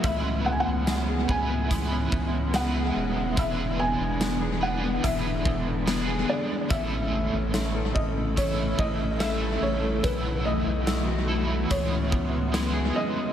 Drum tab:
HH |x-x-x-x-|x-x-x-x-|x-x-x-x-|x-x-x-x-|
TB |--x---x-|--x---x-|--x---x-|--x---x-|
SD |--o---o-|--o---o-|--o---o-|--o---o-|
BD |o--ooo--|o---oo--|o--ooo--|o---oo--|